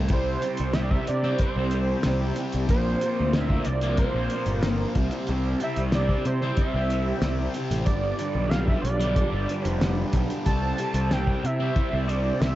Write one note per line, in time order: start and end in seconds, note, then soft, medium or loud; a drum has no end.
0.00 0.11 E3 medium
0.00 0.12 A3 medium
0.00 0.11 E4 medium
0.09 0.36 C2 medium
0.09 0.42 C3 medium
0.09 0.43 G3 medium
0.09 2.68 C4 medium
0.09 7.84 C5 medium
0.09 kick loud
0.09 closed hi-hat medium
0.13 0.45 C4 medium
0.13 2.68 E4 medium
0.13 2.68 G4 medium
0.13 0.75 C5 medium
0.42 0.74 C3 medium
0.42 0.75 G3 medium
0.42 0.77 C4 medium
0.42 closed hi-hat medium
0.57 0.97 C2 medium
0.57 closed hi-hat medium
0.73 1.07 C3 medium
0.73 0.92 G3 medium
0.73 0.83 E5 loud
0.73 snare loud
0.73 closed hi-hat medium
0.78 0.91 C4 medium
0.78 0.91 D5 medium
0.90 1.07 G3 medium
0.90 1.09 C4 medium
0.90 1.08 E5 loud
0.90 kick medium
1.07 1.34 C3 medium
1.07 1.39 D5 loud
1.07 muted distorted electric guitar stroke soft
1.07 closed hi-hat medium
1.23 1.58 G3 medium
1.23 1.57 C4 medium
1.23 snare soft
1.39 2.34 C5 medium
1.39 kick medium
1.39 closed hi-hat medium
1.56 1.94 C2 medium
1.56 1.73 G3 soft
1.56 1.74 C4 medium
1.71 2.03 C3 medium
1.71 1.90 G3 medium
1.71 1.89 C4 medium
1.71 closed hi-hat medium
1.90 2.04 G3 soft
1.90 2.06 C4 medium
2.03 2.31 C2 medium
2.03 2.37 C3 medium
2.03 2.23 G3 medium
2.03 2.21 C4 medium
2.03 snare loud
2.03 closed hi-hat medium
2.22 2.38 G3 medium
2.22 2.40 C4 medium
2.36 2.68 C3 medium
2.36 2.69 G3 medium
2.36 closed hi-hat medium
2.40 2.72 C4 medium
2.52 2.69 C2 medium
2.52 closed hi-hat medium
2.69 2.94 A#1 medium
2.69 3.03 A#2 medium
2.69 3.03 F3 medium
2.69 3.05 A#3 medium
2.69 4.94 C4 medium
2.69 4.94 F4 medium
2.69 4.94 A#4 medium
2.69 3.37 C5 medium
2.69 kick loud
2.69 closed hi-hat medium
3.01 3.34 A#2 medium
3.01 3.35 F3 medium
3.01 closed hi-hat medium
3.06 3.36 A#3 medium
3.20 3.57 D2 medium
3.33 3.66 A#2 medium
3.33 3.51 F3 medium
3.33 3.49 A#3 loud
3.33 3.67 E5 loud
3.33 snare loud
3.33 closed hi-hat medium
3.50 3.67 F3 soft
3.50 3.67 A#3 medium
3.50 kick medium
3.65 4.04 C2 medium
3.65 3.98 D5 medium
3.65 muted distorted electric guitar stroke soft
3.65 closed hi-hat medium
3.81 4.18 F3 medium
3.81 4.16 A#3 medium
3.81 closed hi-hat medium
3.97 4.65 C5 medium
3.97 kick loud
3.97 closed hi-hat medium
4.14 4.27 A#1 medium
4.14 4.34 A#3 medium
4.19 4.33 F3 medium
4.30 4.63 A#2 medium
4.30 closed hi-hat medium
4.34 4.49 F3 medium
4.34 4.47 A#3 medium
4.46 4.84 G1 medium
4.46 4.65 A#3 medium
4.46 closed hi-hat medium
4.51 4.64 F3 medium
4.63 4.95 A#2 medium
4.63 4.80 F3 medium
4.63 4.78 A#3 medium
4.63 4.92 A#4 medium
4.63 snare loud
4.63 closed hi-hat medium
4.79 4.95 F3 medium
4.79 4.94 A#3 medium
4.95 5.08 C2 medium
4.95 5.27 C3 medium
4.95 5.30 G3 medium
4.95 7.85 C4 medium
4.95 5.29 C4 medium
4.95 7.85 E4 medium
4.95 12.55 G4 medium
4.95 kick loud
4.95 closed hi-hat medium
5.11 closed hi-hat medium
5.27 5.54 C2 medium
5.27 5.59 C3 medium
5.27 5.61 G3 loud
5.27 5.62 C4 loud
5.27 closed hi-hat medium
5.60 5.92 C3 medium
5.60 5.94 G3 medium
5.60 5.94 C4 medium
5.60 5.78 E5 loud
5.60 closed hi-hat medium
5.76 6.15 C2 medium
5.76 closed hi-hat medium
5.92 6.25 C3 medium
5.92 6.12 G3 medium
5.92 6.09 C4 loud
5.92 6.24 D5 loud
5.92 snare loud
5.92 closed hi-hat medium
6.09 6.26 G3 medium
6.09 6.25 C4 medium
6.09 kick medium
6.25 6.51 C3 medium
6.25 6.56 C5 medium
6.25 muted distorted electric guitar stroke soft
6.25 closed hi-hat medium
6.41 6.76 G3 medium
6.41 6.73 C4 medium
6.41 snare soft
6.57 7.51 E5 medium
6.57 kick loud
6.57 closed hi-hat medium
6.74 7.12 C2 medium
6.74 6.92 G3 medium
6.74 6.92 C4 medium
6.90 7.22 C3 medium
6.90 7.08 G3 medium
6.90 7.05 C4 medium
6.90 closed hi-hat medium
7.06 7.23 G3 medium
7.06 7.23 C4 medium
7.21 7.47 C2 medium
7.21 7.53 C3 medium
7.21 7.42 G3 medium
7.21 7.39 C4 medium
7.21 snare loud
7.21 closed hi-hat medium
7.40 7.55 G3 medium
7.40 7.55 C4 medium
7.54 7.85 C3 medium
7.54 7.88 G3 medium
7.54 7.86 C4 medium
7.54 closed hi-hat medium
7.71 7.88 A1 medium
7.71 closed hi-hat medium
7.85 8.12 G1 loud
7.85 8.18 G2 medium
7.85 8.19 D3 medium
7.85 8.21 G3 medium
7.85 10.44 D4 medium
7.85 10.44 F4 medium
7.85 10.44 B4 medium
7.85 8.51 D5 loud
7.85 kick loud
7.85 closed hi-hat medium
8.19 8.49 G2 medium
8.19 8.51 D3 medium
8.19 8.52 G3 medium
8.19 closed hi-hat medium
8.35 8.73 B1 medium
8.49 8.83 G2 medium
8.49 8.69 D3 medium
8.49 8.68 G3 medium
8.49 8.67 F5 loud
8.49 snare loud
8.49 closed hi-hat medium
8.65 8.84 G3 medium
8.65 8.81 E5 medium
8.65 kick medium
8.70 8.83 D3 medium
8.82 9.21 B1 medium
8.82 9.68 D5 medium
8.82 muted distorted electric guitar stroke soft
8.82 closed hi-hat medium
9.00 9.33 D3 medium
9.00 9.31 G3 medium
9.00 closed hi-hat medium
9.16 kick loud
9.16 closed hi-hat medium
9.32 9.45 G1 medium
9.32 9.50 D3 medium
9.32 9.50 G3 medium
9.49 9.80 G2 medium
9.49 9.66 D3 medium
9.49 9.64 G3 medium
9.49 closed hi-hat medium
9.65 10.03 F1 medium
9.65 9.81 D3 medium
9.65 9.82 G3 medium
9.65 10.09 C5 medium
9.65 closed hi-hat medium
9.81 10.13 G2 medium
9.81 9.98 D3 medium
9.81 9.96 G3 medium
9.81 snare loud
9.81 closed hi-hat medium
9.97 10.14 D3 soft
9.97 10.15 G3 medium
10.13 10.26 B1 medium
10.13 10.45 G2 medium
10.13 10.45 D3 medium
10.13 10.46 G3 medium
10.13 kick medium
10.13 closed hi-hat medium
10.30 closed hi-hat medium
10.46 10.72 C2 loud
10.46 10.78 C3 medium
10.46 10.79 G3 medium
10.46 12.55 C4 medium
10.46 10.81 C4 medium
10.46 12.55 E4 medium
10.46 12.55 C5 medium
10.46 11.14 A5 loud
10.46 kick loud
10.46 closed hi-hat medium
10.78 11.10 C3 medium
10.78 11.12 G3 medium
10.78 11.14 C4 medium
10.78 closed hi-hat medium
10.94 11.32 C2 medium
10.94 closed hi-hat medium
11.11 11.42 C3 medium
11.11 11.29 G3 medium
11.11 11.27 C4 loud
11.11 11.47 G5 loud
11.11 snare loud
11.11 closed hi-hat medium
11.27 11.43 G3 medium
11.27 11.44 C4 medium
11.27 kick medium
11.44 11.69 C3 medium
11.44 12.10 E5 loud
11.44 muted distorted electric guitar stroke soft
11.44 closed hi-hat medium
11.60 11.90 G3 medium
11.60 11.90 C4 medium
11.76 kick loud
11.76 closed hi-hat medium
11.90 12.31 C2 medium
11.90 12.06 G3 medium
11.90 12.07 C4 medium
12.05 12.38 C3 medium
12.05 12.24 G3 medium
12.05 12.23 C4 medium
12.05 12.42 D5 medium
12.05 closed hi-hat medium
12.24 12.40 G3 medium
12.24 12.41 C4 medium
12.39 12.55 C2 medium
12.39 12.55 C3 medium
12.39 12.55 G3 medium
12.39 12.55 C4 medium
12.39 12.55 E5 loud
12.39 snare loud
12.39 closed hi-hat medium